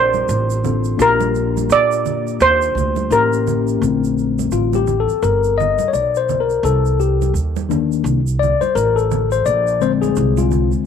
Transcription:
Already playing: upright bass A#1, tine electric piano C4 D4 F4 G4, steel pan C5
0.14 high conga, shaker
0.29 upright bass A1, shaker
0.50 shaker
0.64 tine electric piano C4 D4 F4 A4, low conga, shaker
0.84 shaker
0.97 upright bass A#1, tine electric piano A#3 D4 F4 G4, shaker
1.02 steel pan A#4
1.21 high conga, shaker
1.35 shaker
1.57 high conga, shaker
1.70 upright bass A#2, steel pan D5, shaker
1.92 shaker
2.06 low conga, shaker
2.27 shaker
2.40 upright bass D#2, steel pan C5, shaker
2.62 shaker
2.75 upright bass D2, low conga, shaker
2.96 high conga, shaker
3.10 upright bass A1, tine electric piano A#3 C#4 E4 G4, steel pan A#4, shaker
3.33 shaker
3.47 low conga, shaker
3.68 shaker
3.81 upright bass A#1, tine electric piano D3 A3 C4, shaker
4.04 shaker
4.18 shaker
4.39 high conga, shaker
4.52 upright bass A1, tine electric piano F4, shaker
4.73 tine electric piano G4, high conga, shaker
4.87 low conga, shaker
5.00 tine electric piano A4
5.08 muted upright bass stroke, shaker
5.23 upright bass G1, tine electric piano A#4, shaker
5.44 shaker
5.58 tine electric piano D#5, low conga, shaker
5.79 muted upright bass stroke, high conga, shaker
5.88 tine electric piano C#5
5.93 upright bass B1, tine electric piano D5, shaker
6.15 tine electric piano C5, shaker
6.29 low conga, shaker
6.40 tine electric piano A#4
6.50 shaker
6.63 upright bass C2, tine electric piano A4, shaker
6.86 shaker
7.00 tine electric piano G4, shaker
7.22 high conga, shaker
7.34 upright bass D#2, shaker
7.56 high conga, shaker
7.69 tine electric piano D#3 A#3 D4, low conga, shaker
7.92 shaker
8.04 upright bass C2, shaker
8.27 shaker
8.39 tine electric piano D5, low conga, shaker
8.60 tine electric piano C5, muted upright bass stroke, high conga, shaker
8.75 upright bass A1, tine electric piano A#4, shaker
8.96 tine electric piano A4, shaker
9.11 low conga, shaker
9.32 tine electric piano C5, shaker
9.46 upright bass A#1, tine electric piano D5, shaker
9.67 shaker
9.81 tine electric piano D3 G#3 C4 C5, shaker
10.02 tine electric piano G#4, high conga, shaker
10.16 upright bass C2, shaker
10.37 tine electric piano F4, high conga, shaker
10.51 low conga, shaker
10.72 muted upright bass stroke, shaker

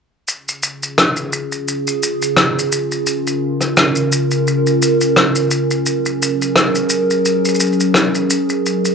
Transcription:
0.28 ambient pad C#3 C#4 F4 G#4, shaker
0.49 shaker
0.63 shaker
0.83 shaker
0.98 cross-stick, shaker
1.16 shaker
1.33 shaker
1.52 shaker
1.68 shaker
1.87 shaker
2.03 shaker
2.22 shaker
2.37 cross-stick, shaker
2.59 shaker
2.72 shaker
2.92 shaker
3.07 ambient pad A#4, shaker
3.27 shaker
3.61 cross-stick, shaker
3.77 cross-stick, shaker
3.96 shaker
4.12 shaker
4.31 shaker
4.47 shaker
4.67 shaker
4.82 shaker
5.01 shaker
5.16 cross-stick, shaker
5.35 shaker
5.51 shaker
5.71 shaker
5.85 ambient pad F#3 G#4 A#4, shaker
6.06 shaker
6.22 shaker
6.42 shaker
6.56 cross-stick, shaker
6.75 shaker
6.90 shaker
7.11 shaker
7.25 shaker
7.45 shaker
7.48 shaker
7.55 shaker
7.60 shaker
7.67 shaker
7.72 shaker
7.80 shaker
7.94 cross-stick, shaker
8.15 shaker
8.30 shaker
8.49 shaker
8.65 ambient pad G#3 B4 D#5, shaker
8.85 shaker

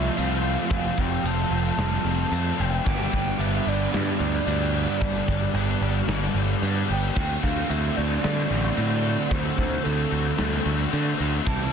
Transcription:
Already playing: overdriven electric guitar F2 C3 F3 A3 C4 F4, soft synth lead E5
0.16 picked electric bass C2, overdriven electric guitar F3 A3 C4 F4, soft synth lead F5, tambourine, crash
0.42 overdriven electric guitar F3 A3 C4 F4
0.69 picked electric bass F1, overdriven electric guitar F2 C3 F3 A3 C4 F4, soft synth lead F5, kick, crash
0.96 picked electric bass F1, overdriven electric guitar F3 A3 C4 F4, soft synth lead G5, kick
1.22 picked electric bass F1, overdriven electric guitar F3 A3 C4 F4, tambourine, crash
1.27 soft synth lead A5
1.51 picked electric bass F1, overdriven electric guitar F3 A3 C4 F4
1.77 picked electric bass F1, overdriven electric guitar F2 C3 F3 A3 C4 F4, snare, crash
1.92 snare
2.04 picked electric bass F1, overdriven electric guitar F3 A3 C4 F4
2.30 picked electric bass F2, overdriven electric guitar F3 A3 C4 F4, tambourine, crash
2.57 picked electric bass F1, overdriven electric guitar F3 A3 C4 F4, soft synth lead G5
2.84 picked electric bass G1, overdriven electric guitar G2 D3 G3 B3 D4 G4, soft synth lead G5, kick, crash
3.11 picked electric bass G1, overdriven electric guitar G3 B3 D4 G4, kick
3.38 picked electric bass G1, overdriven electric guitar G3 B3 D4 G4, soft synth lead E5, tambourine, crash
3.65 picked electric bass G1, overdriven electric guitar G3 B3 D4 G4, soft synth lead D5
3.92 overdriven electric guitar G2 D3 G3 B3 D4 G4, picked electric bass G2, soft synth lead D5, snare, crash
4.08 snare
4.19 picked electric bass D2, overdriven electric guitar G3 B3 D4 G4
4.46 picked electric bass D2, overdriven electric guitar G3 B3 D4 G4, tambourine, crash
4.73 overdriven electric guitar G3 B3 D4 G4
5.00 picked electric bass G1, overdriven electric guitar G2 D3 G3 B3 D4 G4, kick, crash
5.28 picked electric bass G1, overdriven electric guitar G3 B3 D4 G4, kick
5.54 picked electric bass G1, overdriven electric guitar G3 B3 D4 G4, tambourine, crash
5.81 picked electric bass G1, overdriven electric guitar G3 B3 D4 G4
6.07 picked electric bass G1, overdriven electric guitar G2 D3 G3 B3 D4 G4, snare, crash
6.23 snare
6.34 picked electric bass G1, overdriven electric guitar G3 B3 D4 G4
6.62 picked electric bass G2, overdriven electric guitar G3 B3 D4 G4, tambourine, crash
6.89 picked electric bass G1, overdriven electric guitar G3 B3 D4 G4, soft synth lead G5
7.15 picked electric bass D2, overdriven electric guitar D3 A3 C4 F#4, soft synth lead G5, kick, crash
7.41 picked electric bass D2, overdriven electric guitar A3 C4 F#4, soft synth lead F5, kick
7.69 picked electric bass D2, overdriven electric guitar D3 A3 C4 F#4, soft synth lead E5, tambourine, crash
7.96 picked electric bass D2, overdriven electric guitar A3 C4 F#4, soft synth lead D5
8.23 overdriven electric guitar D3 A3 C4 F#4, picked electric bass D3, snare, crash
8.38 snare
8.49 picked electric bass A1, overdriven electric guitar A3 C4 F#4
8.77 picked electric bass A2, overdriven electric guitar D3 A3 C4 F#4, soft synth lead D5, tambourine, crash
9.03 overdriven electric guitar A3 C4 F#4
9.30 picked electric bass D2, overdriven electric guitar D3 A3 C4 F#4, soft synth lead C5, kick, crash
9.57 picked electric bass D2, overdriven electric guitar A3 C4 F#4, soft synth lead C5, kick
9.83 picked electric bass D2, overdriven electric guitar D3 A3 C4 F#4, soft synth lead A4, tambourine, crash
10.11 picked electric bass D2, overdriven electric guitar A3 C4 F#4
10.38 picked electric bass D2, overdriven electric guitar D3 A3 C4 F#4, snare, crash
10.53 snare
10.64 picked electric bass D2, overdriven electric guitar A3 C4 F#4
10.91 overdriven electric guitar D3 A3 C4 F#4, picked electric bass D3, tambourine, crash
11.19 picked electric bass D2, overdriven electric guitar A3 C4 F#4
11.47 picked electric bass C2, overdriven electric guitar C3 E3 G3 C4 E4, soft synth lead A5, kick, crash

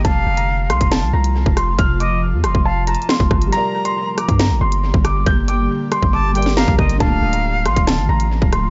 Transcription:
0.05 808-style bass F1, ambient pad C3 F3 A3 F4, flute F5, grand piano A5, kick, closed hi-hat
0.26 808-style bass F1
0.37 grand piano A#5, closed hi-hat
0.70 808-style bass C2, grand piano C6, cross-stick, closed hi-hat
0.81 808-style bass F1, kick, closed hi-hat
0.92 grand piano A5, snare, closed hi-hat
1.03 808-style bass C2
1.13 808-style bass C2, grand piano A#5
1.24 closed hi-hat
1.46 808-style bass F1, kick
1.57 grand piano C6, cross-stick, closed hi-hat
1.79 808-style bass F1, grand piano F6, kick, closed hi-hat
2.00 flute D#5, grand piano D6, closed hi-hat
2.33 808-style bass F2
2.44 808-style bass F1, grand piano C6, cross-stick, closed hi-hat
2.55 808-style bass F1, kick
2.65 flute F5, grand piano A5
2.87 flute A5, grand piano A#5, closed hi-hat
2.95 closed hi-hat
3.02 closed hi-hat
3.09 grand piano C6, snare
3.20 808-style bass F1, kick
3.31 808-style bass G1, kick, cross-stick
3.42 closed hi-hat
3.47 felt piano G3 G4
3.52 ambient pad D3 G3 A#3 G4, felt piano A#4, flute A#5, grand piano A#5, closed hi-hat
3.57 felt piano D5
3.85 grand piano C6, closed hi-hat
4.18 grand piano D6, cross-stick, closed hi-hat
4.29 808-style bass G2, kick, closed hi-hat
4.39 grand piano A#5, snare, closed hi-hat
4.50 808-style bass A1
4.61 808-style bass G1, grand piano C6
4.72 closed hi-hat
4.94 808-style bass G1, kick
5.05 grand piano D6, cross-stick, closed hi-hat
5.26 808-style bass G1, grand piano G6, kick, closed hi-hat
5.48 flute G5, grand piano D6, closed hi-hat
5.92 grand piano C6, cross-stick, closed hi-hat
6.03 808-style bass G1, kick
6.13 flute A5, grand piano D6
6.33 felt piano G3 G4 A#4, flute G5, closed hi-hat
6.38 felt piano D5
6.42 snare, closed hi-hat
6.50 closed hi-hat
6.57 flute F5, grand piano A#5, snare
6.68 808-style bass A#1, kick
6.78 808-style bass G1, flute D#5, kick, cross-stick
6.89 closed hi-hat
6.95 felt piano D3 D4
7.00 808-style bass D1, ambient pad F3 A3 F4, felt piano F4, flute F5, grand piano A5, kick, closed hi-hat
7.05 felt piano A3
7.22 808-style bass D1
7.33 grand piano A#5, closed hi-hat
7.66 808-style bass A1, grand piano C6, cross-stick, closed hi-hat
7.76 808-style bass D1, kick, closed hi-hat
7.87 grand piano A5, snare, closed hi-hat
7.98 808-style bass A1
8.09 808-style bass A1, grand piano A#5
8.20 closed hi-hat
8.42 808-style bass D1, kick
8.52 grand piano C6, cross-stick, closed hi-hat

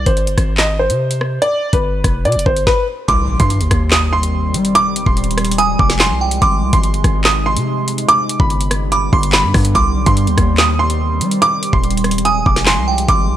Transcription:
0.06 808-style bass G#1, upright piano C5, kick, closed hi-hat
0.17 closed hi-hat
0.27 808-style bass G1, closed hi-hat
0.38 808-style bass G#1, kick, cross-stick, closed hi-hat
0.58 upright piano D#5, snare, clap, closed hi-hat
0.79 upright piano C5
0.90 808-style bass C3, closed hi-hat
1.11 closed hi-hat
1.21 cross-stick
1.42 upright piano D5, closed hi-hat
1.73 808-style bass G1, upright piano B4, kick, closed hi-hat
2.04 808-style bass F1, kick, cross-stick, closed hi-hat
2.25 808-style bass B2, upright piano D5, closed hi-hat
2.32 808-style bass F1, closed hi-hat
2.39 closed hi-hat
2.46 808-style bass G1, upright piano C5, kick
2.56 closed hi-hat
2.67 upright piano B4, kick, snare
3.08 808-style bass C2, ambient pad D#3 G3 C4, synth bell C6, upright piano D6, kick, closed hi-hat, impact
3.29 808-style bass B1
3.40 808-style bass G2, upright piano C6, kick, closed hi-hat
3.50 closed hi-hat
3.61 808-style bass D#2, closed hi-hat
3.71 808-style bass D#2, kick, cross-stick, closed hi-hat
3.91 upright piano D#6, snare, clap
4.13 upright piano C6
4.23 closed hi-hat
4.54 808-style bass G3, closed hi-hat
4.65 closed hi-hat
4.75 ambient pad F3 G#3, upright piano D6, closed hi-hat
4.96 closed hi-hat
5.06 808-style bass D#1, upright piano C6, kick
5.17 closed hi-hat
5.24 closed hi-hat
5.31 closed hi-hat
5.38 cross-stick, closed hi-hat
5.45 closed hi-hat
5.51 closed hi-hat
5.58 synth bell G#5, upright piano D#6, closed hi-hat
5.79 808-style bass F1, upright piano D6, kick
5.90 snare, closed hi-hat
5.99 upright piano C6, snare, clap
6.10 808-style bass C2
6.21 synth bell G5
6.31 closed hi-hat
6.42 808-style bass G#1, ambient pad C3 D#4, synth bell C6, upright piano D6, kick, closed hi-hat
6.63 808-style bass C2
6.73 808-style bass G#1, upright piano C6, kick, closed hi-hat
6.83 closed hi-hat
6.94 808-style bass G1, closed hi-hat
7.04 808-style bass G#1, kick, cross-stick, closed hi-hat
7.24 upright piano D#6, snare, clap
7.46 upright piano C6
7.56 808-style bass C3, closed hi-hat
7.88 closed hi-hat
7.98 closed hi-hat
8.09 ambient pad D3 G3 B3, upright piano D6, closed hi-hat
8.29 closed hi-hat
8.40 808-style bass G1, upright piano B5, kick
8.50 closed hi-hat
8.61 closed hi-hat
8.71 cross-stick, closed hi-hat
8.92 synth bell B5, upright piano D6, closed hi-hat
9.13 808-style bass G1, upright piano C6, synth bell D6, kick
9.23 closed hi-hat
9.33 upright piano B5, snare, clap
9.44 808-style bass G2
9.54 808-style bass G2, kick, cross-stick, open hi-hat
9.65 closed hi-hat
9.75 808-style bass C2, ambient pad D#3 C4, synth bell C6, upright piano D6, kick, closed hi-hat
9.96 808-style bass B1
10.06 808-style bass G2, upright piano C6, kick, closed hi-hat
10.17 closed hi-hat
10.27 808-style bass D#2, closed hi-hat
10.38 808-style bass D#2, kick, cross-stick, closed hi-hat
10.58 upright piano D#6, snare, clap
10.79 upright piano C6
10.90 closed hi-hat
11.21 808-style bass G3, closed hi-hat
11.31 closed hi-hat
11.42 ambient pad F3 G#3, upright piano D6, closed hi-hat
11.63 closed hi-hat
11.73 808-style bass D#1, upright piano C6, kick
11.84 closed hi-hat
11.90 closed hi-hat
11.97 closed hi-hat
12.04 cross-stick, closed hi-hat
12.11 closed hi-hat
12.18 closed hi-hat
12.25 synth bell G#5, upright piano D#6, closed hi-hat
12.46 808-style bass F1, upright piano D6, kick
12.56 snare, closed hi-hat
12.66 upright piano C6, snare, clap
12.77 808-style bass C2
12.88 synth bell G5
12.98 closed hi-hat
13.08 808-style bass G#1, ambient pad C3 D#4, synth bell C6, upright piano D6, kick, closed hi-hat
13.29 808-style bass C2

